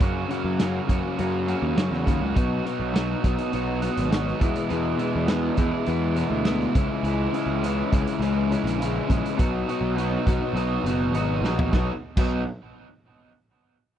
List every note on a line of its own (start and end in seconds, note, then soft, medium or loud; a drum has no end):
0.00 0.27 F#2 medium
0.00 0.23 F#2 loud
0.00 0.27 C#3 loud
0.00 0.29 F#3 loud
0.00 0.28 A#3 medium
0.00 0.29 C#4 loud
0.00 0.30 F#4 loud
0.00 kick loud
0.00 closed hi-hat medium
0.29 0.58 F#2 medium
0.29 0.58 C#3 loud
0.29 0.59 F#3 medium
0.29 0.59 A#3 medium
0.29 0.59 C#4 loud
0.29 0.60 F#4 loud
0.29 closed hi-hat medium
0.44 0.79 F#2 medium
0.59 0.86 F#2 medium
0.59 0.86 C#3 medium
0.59 0.86 F#3 medium
0.59 0.87 A#3 medium
0.59 0.87 C#4 medium
0.59 0.88 F#4 medium
0.59 snare loud
0.59 closed hi-hat medium
0.87 1.17 F#2 medium
0.87 1.00 F#2 medium
0.87 1.17 C#3 medium
0.87 1.17 F#3 medium
0.87 1.18 A#3 medium
0.87 1.19 C#4 medium
0.87 1.19 F#4 medium
0.87 kick medium
0.87 closed hi-hat medium
1.18 1.46 F#2 medium
1.18 1.53 F#2 medium
1.18 1.47 C#3 loud
1.18 1.47 F#3 loud
1.18 1.47 A#3 loud
1.18 1.48 C#4 medium
1.18 1.48 F#4 loud
1.18 closed hi-hat medium
1.48 1.75 F#2 medium
1.48 1.76 C#3 medium
1.48 1.76 F#3 medium
1.48 1.76 A#3 medium
1.48 1.77 C#4 medium
1.48 1.77 F#4 medium
1.48 closed hi-hat medium
1.62 1.74 D#2 loud
1.76 2.05 F#2 medium
1.76 1.90 F#2 medium
1.76 2.05 C#3 medium
1.76 2.06 F#3 medium
1.76 2.07 A#3 medium
1.76 2.07 C#4 medium
1.76 2.07 F#4 medium
1.76 snare loud
1.76 closed hi-hat medium
1.91 2.04 E2 medium
1.91 snare soft
2.06 2.20 D#2 medium
2.06 2.34 F#2 medium
2.06 2.34 C#3 medium
2.06 2.34 F#3 medium
2.06 2.34 A#3 medium
2.06 2.34 C#4 medium
2.06 2.35 F#4 loud
2.06 kick medium
2.06 closed hi-hat medium
2.21 2.34 C#2 medium
2.35 2.58 B1 medium
2.35 2.63 B2 medium
2.35 2.64 F#3 medium
2.35 2.65 B3 loud
2.35 2.64 D#4 medium
2.35 2.65 F#4 loud
2.35 kick loud
2.35 closed hi-hat medium
2.65 2.92 B2 medium
2.65 2.92 F#3 medium
2.65 2.93 B3 loud
2.65 2.94 D#4 medium
2.65 2.94 F#4 loud
2.65 closed hi-hat medium
2.80 3.14 B1 medium
2.93 3.22 B2 medium
2.93 3.22 F#3 medium
2.93 3.23 B3 medium
2.93 3.23 D#4 medium
2.93 3.23 F#4 medium
2.93 snare loud
2.93 closed hi-hat medium
3.23 3.35 B1 medium
3.23 3.51 B2 medium
3.23 3.51 F#3 medium
3.23 3.52 B3 medium
3.23 3.52 D#4 medium
3.23 3.53 F#4 medium
3.23 kick medium
3.23 closed hi-hat medium
3.38 closed hi-hat medium
3.52 3.88 B1 medium
3.52 3.80 B2 medium
3.52 3.81 F#3 medium
3.52 3.82 B3 loud
3.52 3.82 D#4 loud
3.52 3.82 F#4 loud
3.52 closed hi-hat medium
3.82 4.08 B2 medium
3.82 4.09 F#3 medium
3.82 4.10 B3 medium
3.82 4.10 D#4 medium
3.82 4.10 F#4 medium
3.82 closed hi-hat medium
3.97 4.32 G#1 medium
3.97 closed hi-hat medium
4.10 4.38 B2 medium
4.10 4.39 F#3 medium
4.10 4.39 B3 medium
4.10 4.39 D#4 medium
4.10 4.39 F#4 loud
4.10 snare loud
4.10 closed hi-hat medium
4.28 snare soft
4.39 4.68 E2 medium
4.39 4.52 E2 medium
4.39 4.68 B2 medium
4.39 4.70 E3 medium
4.39 4.70 G#3 loud
4.39 4.70 B3 loud
4.39 4.71 E4 loud
4.39 kick loud
4.39 closed hi-hat medium
4.56 closed hi-hat medium
4.69 4.97 E2 medium
4.69 4.94 E2 medium
4.69 4.98 B2 loud
4.69 4.99 E3 medium
4.69 4.99 G#3 loud
4.69 4.99 B3 loud
4.69 5.00 E4 loud
4.69 closed hi-hat medium
4.98 5.27 E2 medium
4.98 5.27 B2 loud
4.98 5.28 E3 medium
4.98 5.29 G#3 medium
4.98 5.29 B3 medium
4.98 5.29 E4 loud
4.98 closed hi-hat medium
5.16 5.49 E2 medium
5.28 5.55 E2 medium
5.28 5.55 B2 medium
5.28 5.57 E3 medium
5.28 5.57 G#3 medium
5.28 5.57 B3 medium
5.28 5.58 E4 medium
5.28 snare loud
5.28 closed hi-hat medium
5.56 5.84 E2 medium
5.56 5.70 E2 medium
5.56 5.85 B2 medium
5.56 5.85 E3 medium
5.56 5.85 G#3 medium
5.56 5.86 B3 medium
5.56 5.87 E4 medium
5.56 kick medium
5.56 closed hi-hat medium
5.85 6.13 E2 medium
5.85 6.22 E2 medium
5.85 6.13 B2 medium
5.85 6.13 E3 loud
5.85 6.14 G#3 loud
5.85 6.15 B3 loud
5.85 6.15 E4 loud
5.85 closed hi-hat medium
6.14 6.43 E2 medium
6.14 6.44 B2 medium
6.14 6.44 E3 medium
6.14 6.44 G#3 medium
6.14 6.45 B3 medium
6.14 6.45 E4 loud
6.14 closed hi-hat medium
6.30 6.65 D2 loud
6.44 6.73 E2 medium
6.44 6.73 B2 medium
6.44 6.73 E3 medium
6.44 6.73 G#3 loud
6.44 6.74 B3 medium
6.44 6.74 E4 medium
6.44 snare loud
6.44 closed hi-hat medium
6.60 snare soft
6.74 6.87 C#2 loud
6.74 7.02 C#3 medium
6.74 7.03 E3 medium
6.74 7.03 G#3 loud
6.74 7.03 C#4 loud
6.74 7.04 E4 loud
6.74 kick loud
6.74 closed hi-hat medium
7.03 7.27 C#2 medium
7.03 7.31 C#3 medium
7.03 7.31 E3 medium
7.03 7.31 G#3 loud
7.03 7.32 C#4 loud
7.03 7.33 E4 loud
7.03 closed hi-hat medium
7.32 7.61 C#3 loud
7.32 7.62 E3 medium
7.32 7.63 G#3 medium
7.32 7.63 C#4 loud
7.32 7.64 E4 medium
7.32 closed hi-hat medium
7.46 7.82 C#2 medium
7.63 7.90 C#3 medium
7.63 7.90 E3 medium
7.63 7.91 G#3 medium
7.63 7.92 C#4 medium
7.63 7.92 E4 loud
7.63 closed hi-hat medium
7.91 8.04 C#2 medium
7.91 8.20 C#3 medium
7.91 8.21 E3 medium
7.91 8.21 G#3 medium
7.91 8.21 C#4 medium
7.91 8.21 E4 medium
7.91 kick medium
7.91 closed hi-hat medium
8.07 closed hi-hat medium
8.19 8.55 C#2 medium
8.19 8.49 C#3 loud
8.19 8.49 E3 loud
8.19 8.50 G#3 loud
8.19 8.50 C#4 loud
8.19 8.51 E4 loud
8.19 closed hi-hat medium
8.50 8.79 C#3 medium
8.50 8.80 E3 medium
8.50 8.80 G#3 medium
8.50 8.81 C#4 medium
8.50 8.81 E4 medium
8.50 closed hi-hat medium
8.64 8.99 A#1 loud
8.64 closed hi-hat medium
8.80 9.07 C#3 medium
8.80 9.08 E3 medium
8.80 9.08 G#3 medium
8.80 9.09 C#4 medium
8.80 9.09 E4 loud
8.80 closed hi-hat medium
9.09 9.21 A#1 medium
9.09 9.36 C#3 medium
9.09 9.37 E3 medium
9.09 9.37 G#3 loud
9.09 9.38 C#4 medium
9.09 9.38 E4 medium
9.09 kick medium
9.09 closed hi-hat medium
9.26 closed hi-hat medium
9.37 9.63 B1 medium
9.37 9.66 B2 medium
9.37 9.67 F#3 medium
9.37 9.67 B3 loud
9.37 9.68 D#4 loud
9.37 9.68 F#4 loud
9.37 kick loud
9.37 closed hi-hat medium
9.67 9.96 B2 medium
9.67 9.97 F#3 loud
9.67 9.97 B3 loud
9.67 9.97 D#4 loud
9.67 9.98 F#4 loud
9.67 closed hi-hat medium
9.81 10.16 B1 medium
9.98 10.26 B2 medium
9.98 10.27 F#3 medium
9.98 10.27 B3 medium
9.98 10.28 D#4 medium
9.98 10.28 F#4 medium
9.98 closed hi-hat medium
10.27 10.38 B1 medium
10.27 10.54 B2 medium
10.27 10.54 F#3 medium
10.27 10.54 B3 medium
10.27 10.55 D#4 medium
10.27 10.55 F#4 medium
10.27 kick medium
10.27 closed hi-hat medium
10.53 10.77 B1 medium
10.53 10.85 B2 loud
10.53 10.85 F#3 loud
10.53 10.85 B3 loud
10.53 10.86 D#4 loud
10.53 10.86 F#4 loud
10.53 closed hi-hat medium
10.84 11.11 F#1 medium
10.84 11.13 B2 medium
10.84 11.14 F#3 medium
10.84 11.15 B3 medium
10.84 11.15 D#4 loud
10.84 11.15 F#4 medium
10.84 closed hi-hat medium
11.12 11.40 G#1 medium
11.12 11.43 B2 medium
11.12 11.44 F#3 medium
11.12 11.44 B3 medium
11.12 11.44 D#4 medium
11.12 11.45 F#4 medium
11.12 closed hi-hat medium
11.42 11.69 A#1 medium
11.42 11.72 B2 medium
11.42 11.72 F#3 medium
11.42 11.72 B3 medium
11.42 11.72 D#4 loud
11.42 snare medium
11.46 11.73 F#4 loud
11.59 floor tom medium
11.73 11.89 B1 medium
11.73 11.91 B2 loud
11.73 11.91 F#3 loud
11.73 11.91 B3 loud
11.73 11.92 D#4 loud
11.73 11.92 F#4 loud
11.73 kick loud
11.73 snare medium
12.17 12.44 B1 medium
12.17 12.41 B2 loud
12.17 12.41 F#3 loud
12.17 12.41 B3 loud
12.17 12.42 D#4 loud
12.17 12.42 F#4 loud
12.17 kick loud
12.17 crash loud